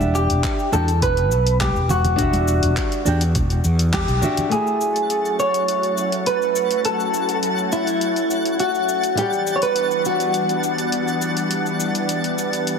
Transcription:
Already playing: E1 D4 G4 E5 F#5
0.01 high conga, cabasa
0.15 G4, cabasa
0.30 E1, closed hi-hat, cabasa
0.44 kick, clap, closed hi-hat, cabasa
0.59 cabasa
0.72 E2 D4 F#4 G4 A4 G5, high conga, cabasa
0.88 closed hi-hat, cabasa
1.02 E1 B4, kick, closed hi-hat, cabasa
1.17 closed hi-hat, cabasa
1.31 B1, cabasa
1.47 closed hi-hat, cabasa
1.60 G4, kick, clap, closed hi-hat, high conga, cabasa
1.76 E1, cabasa
1.89 F#4, low conga, cabasa
2.05 closed hi-hat, low conga, cabasa
2.16 E1 G3 D4 F#4, kick, closed hi-hat, cabasa
2.22 E5
2.33 closed hi-hat, high conga, cabasa
2.48 cabasa
2.63 E1, closed hi-hat, cabasa
2.77 kick, clap, closed hi-hat, cabasa
2.92 closed hi-hat, cabasa
3.05 E2 D4 F#4 G4 G5, cabasa
3.21 closed hi-hat, cabasa
3.35 E1, kick, closed hi-hat, cabasa
3.50 closed hi-hat, cabasa
3.64 E2, cabasa
3.79 closed hi-hat, cabasa
3.93 G4, kick, clap, closed hi-hat, high conga, cabasa
4.08 B1, closed hi-hat, cabasa
4.21 D4 F#4 G4 E5, low conga, cabasa
4.37 closed hi-hat, low conga, cabasa
4.49 F#3 A3 C#4 E4 F#4 G#4 F#5 A6, closed hi-hat, cabasa
4.55 E5
4.67 cabasa
4.81 cabasa
4.96 closed hi-hat, cabasa
5.10 closed hi-hat, cabasa
5.25 cabasa
5.40 C#5, cabasa
5.54 closed hi-hat, cabasa
5.68 closed hi-hat, cabasa
5.83 closed hi-hat, cabasa
5.98 cabasa
6.12 closed hi-hat, cabasa
6.26 B4, closed hi-hat, cabasa
6.42 cabasa
6.56 cabasa
6.71 closed hi-hat, cabasa
6.85 A4, closed hi-hat, cabasa
7.00 cabasa
7.14 cabasa
7.29 closed hi-hat, cabasa
7.43 closed hi-hat, cabasa
7.58 cabasa
7.72 E4, cabasa
7.87 closed hi-hat, cabasa
8.01 closed hi-hat, cabasa
8.16 closed hi-hat, cabasa
8.31 cabasa
8.45 closed hi-hat, cabasa
8.60 F#4, closed hi-hat, cabasa
8.75 cabasa
8.89 cabasa
9.04 closed hi-hat, cabasa
9.15 E3 G3 B3 D4 E4 G4 F#5, closed hi-hat, cabasa
9.21 D5
9.33 cabasa
9.47 cabasa
9.56 C#5
9.62 B4, closed hi-hat, cabasa
9.76 closed hi-hat, cabasa
9.91 cabasa
10.05 F#4, cabasa
10.20 closed hi-hat, cabasa
10.34 closed hi-hat, cabasa
10.49 closed hi-hat, cabasa
10.64 cabasa
10.78 closed hi-hat, cabasa
10.92 closed hi-hat, cabasa
11.08 cabasa
11.22 cabasa
11.37 closed hi-hat, cabasa
11.51 closed hi-hat, cabasa
11.66 cabasa
11.80 cabasa
11.95 closed hi-hat, cabasa
12.09 closed hi-hat, cabasa
12.24 closed hi-hat, cabasa
12.38 cabasa
12.53 closed hi-hat, cabasa
12.67 closed hi-hat, cabasa

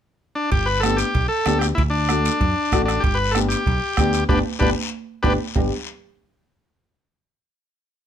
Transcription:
0.35 D4
0.52 G1 G4, bombo low, high conga, high timbale, long guiro
0.66 B4
0.80 B3 A4, bombo rim, high conga, high timbale, short guiro
0.84 D4 G4
0.97 G4, high timbale, short guiro
1.15 B1, bombo low, high timbale, long guiro
1.28 A4
1.46 D2 B3 D4 G4, bombo rim, high conga, high timbale, low timbale, short guiro
1.59 G4, bombo rim, high timbale, short guiro
1.75 D2 E4, bombo low, high conga, high timbale, long guiro
1.90 D4
2.09 A3 D4 F#4, bombo rim, high conga, high timbale, short guiro
2.25 high timbale, short guiro
2.40 F#2, bombo low, high conga, high timbale, long guiro
2.72 A1 A3 D4 F#4, bombo low, bombo rim, high conga, high timbale, short guiro
2.86 D4, bombo rim, high timbale, short guiro
3.00 G1 G4, bombo low, high timbale
3.04 long guiro
3.15 B4
3.32 B3 D4 A4, bombo rim, high conga, short guiro
3.36 G4, high timbale
3.49 G4, high timbale, short guiro
3.66 B1, bombo low, high conga, high timbale, long guiro
3.97 D2 B3 D4 G4, bombo low, bombo rim, high conga, high timbale, short guiro
4.13 high timbale, short guiro
4.29 G1 B3 D4 G4 B4, bombo low, high conga, high timbale, long guiro
4.59 G1 B3 D4 G4 B4, bombo low, high conga, high timbale, long guiro
5.23 G1 B3 D4 G4 B4, bombo low, high conga, high timbale, long guiro
5.55 G1 B3 D4 G4, bombo low, low conga, low timbale, long guiro

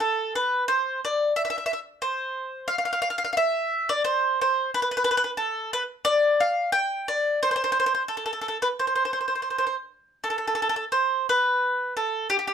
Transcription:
0.00 A4
0.35 B4
0.68 C5
1.05 D5
1.36 E5
1.45 E5
1.50 E5
1.58 E5
1.66 E5
1.73 E5
2.02 C5
2.68 F5
2.78 F5
2.85 F5
2.93 F5
3.02 F5
3.10 F5
3.18 F5
3.25 F5
3.33 F5
3.37 E5
3.89 D5
4.05 C5
4.41 C5
4.74 B4
4.82 B4
4.91 B4
4.97 B4
5.04 B4
5.11 B4
5.17 B4
5.24 B4
5.37 A4
5.73 B4
6.05 D5
6.40 F5
6.72 G5
7.08 D5
7.43 C5
7.51 C5
7.56 C5
7.64 C5
7.72 C5
7.80 C5
7.86 C5
7.95 C5
8.08 A4
8.17 A4
8.26 A4
8.33 A4
8.41 A4
8.48 A4
8.62 B4
8.79 C5
8.87 C5
8.96 C5
9.05 C5
9.13 C5
9.21 C5
9.28 C5
9.35 C5
9.42 C5
9.50 C5
9.58 C5
9.67 C5
10.24 A4
10.30 A4
10.38 A4
10.48 A4
10.55 A4
10.62 A4
10.69 A4
10.76 A4
10.92 C5
11.29 B4
11.97 A4
12.30 G4
12.39 G4
12.47 G4

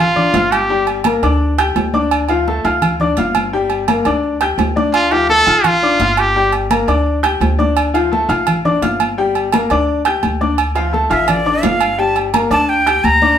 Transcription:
Already playing: A1 F4 F6
0.16 D4 D5 D6, high conga, low conga
0.34 G1 F4 F5 F6, high conga, low timbale, low agogo
0.51 G4, low agogo
0.69 G3 G4 G5, high conga
0.87 high conga, low agogo
1.04 A#3 A#4 A#5, high conga, low agogo
1.23 D2 D4 D5 D6, high conga, low agogo
1.41 high conga
1.58 G4 G5 G6, high conga, low agogo
1.76 D2, high conga, low timbale, low agogo
1.94 D4 D5 D6, high conga
2.11 high conga, low agogo
2.29 F3 F4 F5, high conga, low agogo
2.47 A3 A4 A5, high conga
2.64 D2 F4 F5 F6, high conga, low agogo
2.82 high conga, low conga, low agogo
3.00 D4 D5 D6, high conga, low conga
3.17 G1 F4 F5 F6, high conga, low agogo
3.35 high conga, low agogo
3.53 G3 G4 G5, high conga
3.70 high conga, low agogo
3.88 A#3 A#4 A#5, high conga, low agogo
4.05 D2 D4 D5 D6, high conga, low agogo
4.23 high conga
4.41 G4 G5 G6, high conga, low agogo
4.58 D2, high conga, low timbale, low agogo
4.76 D4 D5 D6, high conga
4.94 F4, low agogo
5.11 F3 F4 G4 F5, high conga, low agogo
5.29 A3 A4 A5, high conga
5.47 A1 F4 F5 F6, high conga, low agogo
5.64 F4, high conga, low conga, low agogo
5.82 D4 D5 D6, high conga
5.99 G1 F4 F5 F6, high conga, low agogo
6.17 G4, low agogo
6.35 G3 G4 G5, high conga
6.52 high conga, low agogo
6.70 A#3 A#4 A#5, high conga, low agogo
6.88 D2 D4 D5 D6, low agogo
7.06 high conga
7.23 G4 G5 G6, high conga, low agogo
7.41 D2, high conga, low timbale, low agogo
7.58 D4 D5 D6, high conga
7.77 high conga, low agogo
7.94 F3 F4 F5, high conga, low agogo
8.12 A3 A4 A5, high conga
8.29 A1 F4 F5 F6, high conga, low agogo
8.47 high conga, low conga, low agogo
8.65 D4 D5 D6, high conga, low conga
8.82 G1 F4 F5 F6, high conga, low agogo
9.00 high conga, low agogo
9.18 G3 G4 G5, high conga
9.35 high conga, low agogo
9.52 A#3 A#4 A#5, high conga, low agogo
9.70 D2 D4 D5 D6, high conga, low agogo
9.89 high conga
10.05 G4 G5 G6, high conga, low agogo
10.23 D2, high conga, low agogo
10.41 D4 D5 D6, high conga
10.58 high conga, low agogo
10.75 F3 F4 F5, high conga, low agogo
10.93 A3 A4 A5, high conga
11.10 A1 F4 E5 F5 F6, high conga, low agogo
11.28 D5, high conga, low conga, low agogo
11.46 D4 D5 D6, high conga
11.63 G1 F4 F5 F6, high conga, low timbale, low agogo
11.81 low agogo
11.98 G3 G4 G5 A5, high conga
12.16 high conga, low agogo
12.34 A#3 A#4 A#5, high conga, low agogo
12.50 D2 D4 D5 A5 D6, high conga, low agogo
12.68 G5, high conga
12.86 G4 G5 G6, high conga, low agogo
13.04 D2 A#5, high conga, low agogo
13.22 D4 D5 D6, high conga

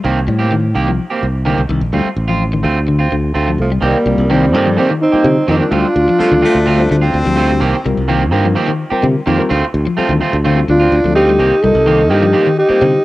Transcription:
0.04 C2 D#3 A#3 C4 G4
0.28 A2 G3
0.39 A#3 C4 G4
0.52 D#3
0.75 C2 D#3 A#3 G4, muted clean electric guitar stroke
0.88 F3
1.10 A#3 C4 G4
1.23 C2
1.45 D3 D#3 A#3 C4 G4
1.58 C2
1.69 C2 D#3
1.81 A#1
1.93 D2 G3 A3 C4 F4
2.05 muted fingered electric bass stroke
2.17 A1
2.28 F3 C4 F4
2.53 D#3
2.63 D2 A3 C4 F4
2.88 D3
2.99 C4 F4
3.12 D2 D3
3.34 D2 A3 C4 F4
3.48 F3
3.58 C2 F3 A3
3.72 G3
3.81 C2 D#3 G3 A#3 C4 G4
4.06 C2 G3 C4 F4 A#4
4.18 C2
4.30 D#3 G3 A#3 C4 G4
4.53 G2 D#3 G3 A#3 C4 F4 G4 A4
4.67 F3
4.77 D#3 G3 A#3 C4 G4
4.90 D#3
5.02 C4 D#4
5.12 G3 A#3 C4 F4 G4 C5, muted fingered electric bass stroke
5.24 C3 D3
5.47 F2 D#3 A#3 C4 D#4 G4
5.60 G3 C4 D4 F4 A#4
5.71 D2 G3 A3 C4 F4
5.96 D2
6.09 F3
6.19 F3 G3 A3 C4 F4 A4, muted clean electric guitar stroke, muted fingered electric bass stroke
6.31 D2 D#3
6.42 A3 C4 F4
6.55 D2
6.66 D3 A3 C4 F4
6.78 G3 C4 F4 C5
6.91 D2 D3 A3
7.01 C4 F4
7.14 D2
7.25 D2 F3 G3 C4 F4 G4
7.36 A3 C4 F4
7.51 G3
7.60 C2 D#3 A#3 C4 G4
7.85 C2 G3 C4 F4 A#4
7.97 C2
8.08 D#3 A#3 C4 G4
8.31 G2 D#3 G3 A#3 C4 F4 G4 A#4
8.45 F3
8.56 D#3 A#3 C4 G4
8.68 D#3
8.91 G3 C4 F4 G4 A#4, muted fingered electric bass stroke, muted clean electric guitar stroke
9.03 C3 D3
9.26 F2 D#3 A#3 C4 G4
9.37 G3 C4 F4 A#4
9.49 D2 A3 C4 F4, muted clean electric guitar stroke
9.74 D2
9.87 F3
9.97 G3 A3 C4 F4 A4, muted fingered electric bass stroke
10.09 D2 D#3
10.20 A3 C4 F4
10.33 D2
10.44 D3 A3 C4 F4
10.55 G3 C4 F4 A4
10.68 D2 D3 D4 F4
10.79 C4 F4
10.92 D2
11.03 D2 F3 G3 C4 F4 A4
11.15 A3 C4 D#4 F4 G4
11.29 G3
11.39 C2 D#3 A#3 C4 G4
11.63 C2 G3 C4 D#4 F4 A4 A#4
11.75 C2
11.86 D#3 A#3 C4 G4
12.10 G2 D#3 G3 A#3 C4 D#4 F4 G4 A#4
12.23 F3
12.33 D#3 A#3 C4 G4
12.46 D#3
12.58 D#4 G4
12.69 G3 A#3 C4 F4 G4 C5, muted fingered electric bass stroke
12.82 C3 D3

